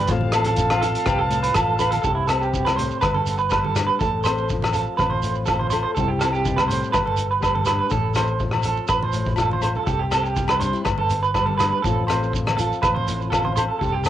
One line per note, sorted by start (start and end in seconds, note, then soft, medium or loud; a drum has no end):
0.07 0.94 A1 medium
0.07 1.27 A2 medium
0.07 0.55 F3 medium
0.07 0.32 C4 medium
0.07 0.81 F4 medium
0.07 1.06 A4 medium
0.07 2.03 F5 medium
0.07 2.03 A5 medium
0.07 muted clean electric guitar stroke medium
0.07 kick medium
0.07 closed hi-hat medium
0.07 shekere medium
0.21 high conga medium
0.32 2.02 C4 medium
0.32 0.45 A4 medium
0.32 cross-stick medium
0.32 closed hi-hat medium
0.32 low agogo medium
0.32 shekere medium
0.45 0.70 A4 medium
0.45 closed hi-hat medium
0.45 low conga medium
0.56 2.04 F3 medium
0.56 kick medium
0.56 closed hi-hat soft
0.56 shekere medium
0.70 0.82 F4 medium
0.70 cross-stick medium
0.70 high conga medium
0.70 low agogo medium
0.81 1.54 F4 medium
0.81 1.05 A4 medium
0.81 closed hi-hat soft
0.81 low conga medium
0.81 shekere medium
0.95 closed hi-hat soft
1.06 1.50 C2 medium
1.06 1.19 G4 medium
1.06 1.79 B4 medium
1.06 kick medium
1.06 cross-stick medium
1.06 closed hi-hat soft
1.06 low agogo medium
1.06 shekere medium
1.18 1.42 A4 medium
1.28 2.01 A2 medium
1.28 closed hi-hat soft
1.28 shekere medium
1.43 1.54 B4 medium
1.43 closed hi-hat soft
1.54 1.98 A1 medium
1.54 2.02 F4 medium
1.54 1.79 A4 medium
1.54 kick medium
1.54 cross-stick medium
1.54 closed hi-hat soft
1.54 low agogo medium
1.54 shekere medium
1.79 2.02 A4 medium
1.79 1.90 B4 medium
1.79 closed hi-hat soft
1.79 low conga medium
1.79 low agogo medium
1.79 shekere medium
1.91 2.01 A4 medium
1.91 closed hi-hat soft
1.91 high conga medium
2.02 2.90 C2 medium
2.02 3.02 C3 medium
2.02 3.02 G4 medium
2.02 2.15 A4 medium
2.02 kick medium
2.02 shekere medium
2.15 2.27 E4 medium
2.27 3.00 C4 medium
2.27 2.41 A4 medium
2.27 cross-stick medium
2.27 closed hi-hat medium
2.27 low agogo medium
2.27 shekere medium
2.41 2.65 G4 medium
2.41 shekere soft
2.53 2.76 B2 medium
2.53 kick medium
2.53 shekere medium
2.65 2.76 B4 medium
2.65 cross-stick medium
2.65 high conga medium
2.65 low agogo medium
2.76 3.01 A2 medium
2.76 3.01 C5 medium
2.76 closed hi-hat medium
2.76 low conga medium
2.91 shekere soft
3.01 3.88 G1 medium
3.01 4.00 G2 medium
3.01 3.14 B4 medium
3.01 3.97 B4 medium
3.01 kick medium
3.01 cross-stick medium
3.01 high conga medium
3.01 low agogo medium
3.01 shekere medium
3.14 3.38 A4 medium
3.14 high conga medium
3.26 3.98 B3 medium
3.26 closed hi-hat soft
3.26 shekere medium
3.38 3.49 B4 medium
3.38 shekere soft
3.50 3.98 G3 medium
3.50 3.63 B4 medium
3.50 kick medium
3.50 cross-stick medium
3.50 low agogo medium
3.50 shekere medium
3.64 3.75 A4 medium
3.64 high conga medium
3.76 4.01 D4 medium
3.76 cross-stick medium
3.76 closed hi-hat soft
3.76 low conga medium
3.76 low agogo medium
3.76 shekere medium
3.87 3.99 B4 medium
3.99 4.86 A1 medium
3.99 5.21 A2 medium
3.99 4.23 A4 medium
3.99 5.72 A4 medium
3.99 kick medium
3.99 shekere medium
4.24 4.98 C4 medium
4.24 4.48 C5 medium
4.24 cross-stick medium
4.24 closed hi-hat soft
4.24 low agogo medium
4.24 shekere medium
4.37 shekere soft
4.49 5.96 F3 medium
4.49 kick medium
4.49 shekere medium
4.62 cross-stick medium
4.62 high conga medium
4.62 low agogo medium
4.73 5.47 F4 medium
4.73 4.97 A4 medium
4.73 closed hi-hat soft
4.73 low conga medium
4.73 shekere medium
4.86 shekere soft
4.97 5.83 A1 medium
4.97 5.94 C4 medium
4.97 5.09 B4 medium
4.97 kick medium
4.97 cross-stick medium
4.97 high conga medium
4.97 low agogo medium
4.97 shekere medium
5.10 5.34 C5 medium
5.10 high conga medium
5.22 5.93 A2 medium
5.22 closed hi-hat soft
5.22 shekere medium
5.35 shekere soft
5.46 5.94 F4 medium
5.46 5.59 A4 medium
5.46 kick medium
5.46 cross-stick medium
5.46 low agogo medium
5.46 shekere medium
5.59 5.69 C5 medium
5.59 high conga medium
5.70 5.94 A4 medium
5.70 5.82 C5 medium
5.70 closed hi-hat soft
5.70 low conga medium
5.70 low agogo medium
5.70 shekere medium
5.83 5.94 C5 medium
5.95 6.81 C2 medium
5.95 6.94 C3 medium
5.95 6.91 G3 medium
5.95 6.21 C4 medium
5.95 6.08 A4 medium
5.95 kick medium
5.95 shekere medium
5.99 6.92 E4 medium
5.99 6.94 G4 medium
6.08 6.20 G4 medium
6.19 6.92 C4 medium
6.19 6.32 A4 medium
6.19 cross-stick medium
6.19 closed hi-hat soft
6.19 low agogo medium
6.19 shekere medium
6.33 6.56 G4 medium
6.33 shekere soft
6.45 6.68 B2 medium
6.45 kick medium
6.45 shekere medium
6.56 6.67 B4 medium
6.56 cross-stick medium
6.56 high conga medium
6.56 low agogo medium
6.68 6.93 A2 medium
6.68 6.92 C5 medium
6.68 closed hi-hat medium
6.68 low conga medium
6.68 shekere medium
6.83 shekere soft
6.92 7.79 G1 loud
6.92 7.89 G2 medium
6.92 7.05 B4 medium
6.92 7.89 B4 medium
6.92 kick medium
6.92 cross-stick medium
6.92 high conga medium
6.92 low agogo medium
6.92 shekere medium
7.06 7.29 A4 medium
7.06 high conga medium
7.17 7.89 B3 medium
7.17 closed hi-hat soft
7.17 shekere medium
7.31 7.41 B4 medium
7.31 shekere soft
7.40 7.88 G3 medium
7.40 7.54 B4 medium
7.40 kick medium
7.40 cross-stick medium
7.40 low agogo medium
7.40 shekere medium
7.55 7.66 A4 medium
7.55 high conga medium
7.65 7.92 D4 medium
7.65 7.77 B4 medium
7.65 cross-stick medium
7.65 closed hi-hat soft
7.65 low conga medium
7.65 low agogo medium
7.65 shekere medium
7.79 7.91 B4 medium
7.90 8.77 A1 medium
7.90 9.11 A2 medium
7.90 9.61 A4 medium
7.90 8.15 A4 medium
7.90 kick medium
7.90 shekere medium
8.14 8.88 C4 medium
8.14 8.40 C5 medium
8.14 cross-stick medium
8.14 closed hi-hat medium
8.14 high conga medium
8.14 low conga medium
8.14 low agogo medium
8.14 shekere medium
8.27 shekere soft
8.39 9.87 F3 medium
8.39 kick medium
8.39 shekere medium
8.51 cross-stick medium
8.51 high conga medium
8.51 low agogo medium
8.62 8.89 A4 medium
8.62 muted nylon-string guitar stroke medium
8.62 closed hi-hat soft
8.62 low conga medium
8.62 shekere medium
8.76 shekere soft
8.88 9.75 A1 medium
8.88 9.85 C4 medium
8.88 9.02 B4 medium
8.88 kick medium
8.88 cross-stick medium
8.88 low agogo medium
8.88 shekere medium
9.02 9.26 C5 medium
9.02 high conga medium
9.12 9.84 A2 medium
9.12 closed hi-hat soft
9.12 shekere medium
9.25 kick medium
9.25 shekere soft
9.36 9.84 F4 medium
9.36 9.51 A4 medium
9.36 kick medium
9.36 cross-stick medium
9.36 low agogo medium
9.36 shekere medium
9.51 9.63 C5 medium
9.51 high conga medium
9.62 9.85 A4 medium
9.62 9.76 C5 medium
9.62 closed hi-hat soft
9.62 low conga medium
9.62 low agogo medium
9.62 shekere medium
9.75 9.85 A4 medium
9.75 low conga medium
9.75 shekere soft
9.86 10.73 C2 medium
9.86 10.85 C3 medium
9.86 10.86 G4 medium
9.86 9.99 A4 medium
9.86 kick medium
9.86 shekere medium
9.99 10.11 G4 medium
10.11 10.83 C4 medium
10.11 10.24 A4 medium
10.11 cross-stick medium
10.11 closed hi-hat soft
10.11 low agogo medium
10.11 shekere medium
10.23 10.48 G4 medium
10.23 shekere soft
10.35 10.82 G3 medium
10.35 kick medium
10.35 shekere medium
10.48 10.59 B4 medium
10.48 cross-stick medium
10.48 high conga medium
10.48 low agogo medium
10.60 10.73 D4 medium
10.60 10.84 C5 medium
10.60 closed hi-hat soft
10.60 low conga medium
10.60 shekere medium
10.73 10.85 E4 soft
10.73 shekere soft
10.85 11.71 G1 medium
10.85 11.83 G2 medium
10.85 11.82 B4 medium
10.85 muted clean electric guitar stroke medium
10.85 kick medium
10.85 cross-stick medium
10.85 high conga medium
10.85 low agogo medium
10.85 shekere medium
10.98 11.22 A4 medium
10.98 high conga medium
11.10 11.82 B3 medium
11.10 closed hi-hat soft
11.10 shekere medium
11.23 11.33 B4 medium
11.23 shekere soft
11.34 11.81 G3 medium
11.34 11.46 B4 medium
11.34 kick medium
11.34 cross-stick medium
11.34 low agogo medium
11.34 shekere medium
11.46 11.57 A4 medium
11.46 high conga medium
11.58 11.84 D4 medium
11.58 11.70 B4 medium
11.58 cross-stick medium
11.58 closed hi-hat soft
11.58 low conga medium
11.58 low agogo medium
11.58 shekere medium
11.71 11.82 B4 medium
11.82 12.70 A1 medium
11.82 13.05 A2 medium
11.82 12.30 F3 medium
11.82 12.07 C4 medium
11.82 12.58 F4 medium
11.82 12.06 A4 medium
11.82 kick medium
11.82 shekere medium
11.87 13.56 A4 medium
12.07 12.81 C4 medium
12.07 12.31 C5 medium
12.07 cross-stick medium
12.07 closed hi-hat medium
12.07 low agogo medium
12.07 shekere medium
12.23 shekere soft
12.32 13.80 F3 medium
12.32 kick medium
12.32 shekere medium
12.46 cross-stick medium
12.46 high conga medium
12.46 low agogo medium
12.57 13.31 F4 medium
12.57 12.81 A4 medium
12.57 closed hi-hat soft
12.57 low conga medium
12.57 shekere medium
12.72 shekere soft
12.82 13.68 A1 medium
12.82 13.78 C4 medium
12.82 12.94 B4 medium
12.82 kick medium
12.82 cross-stick medium
12.82 high conga medium
12.82 low agogo medium
12.82 shekere medium
12.94 13.18 C5 medium
12.94 high conga medium
13.06 13.78 A2 medium
13.06 closed hi-hat soft
13.06 shekere medium
13.21 shekere soft
13.30 13.79 F4 medium
13.30 13.43 A4 medium
13.30 kick medium
13.30 cross-stick medium
13.30 low agogo medium
13.30 shekere medium
13.45 13.55 C5 medium
13.45 high conga medium
13.56 13.79 A4 medium
13.56 13.68 C5 medium
13.56 closed hi-hat soft
13.56 low conga medium
13.56 low agogo medium
13.56 shekere loud
13.68 13.78 A4 medium
13.79 14.09 C2 medium
13.79 14.09 C3 medium
13.79 14.09 G4 medium
13.79 13.92 A4 medium
13.79 kick medium
13.79 shekere medium
13.92 14.04 G4 medium
14.04 14.09 C4 medium
14.04 14.09 A4 medium
14.04 cross-stick medium
14.04 closed hi-hat medium
14.04 low agogo medium
14.04 shekere medium